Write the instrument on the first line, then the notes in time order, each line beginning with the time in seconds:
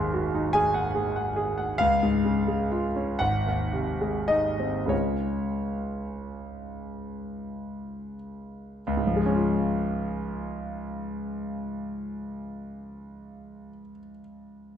grand piano
Already playing: G#1 D#2 D#3 G#3 C6
0.13 F#4
0.34 D#4
0.53 G#4 G#5
0.74 F#5
0.95 G#4
1.16 F#5
1.36 G#4
1.58 F#5
1.78 C#2 F5
2.03 G#2
2.25 C#3
2.47 G#3
2.71 F4
2.96 C#4
3.19 G#1 F#5
3.46 D#2
3.73 C3
4.01 G#3
4.28 D#4 D#5
4.60 C4
4.86 C#2 C#3 G#3 C#5
4.90 F4
8.87 C#2
8.97 G#2
9.07 F3
9.16 G#3
9.26 C#4
9.35 F4